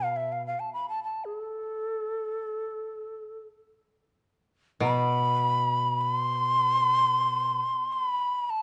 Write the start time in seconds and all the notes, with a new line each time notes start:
Already playing: B2 F5
0.16 E5
0.32 F5
0.47 F5
0.60 A5
0.73 B5
0.89 A5
1.04 A5
1.25 G#4
1.38 A4
4.80 B2 B5
6.01 B5
6.14 C6
7.92 C6
8.04 B5
8.50 A5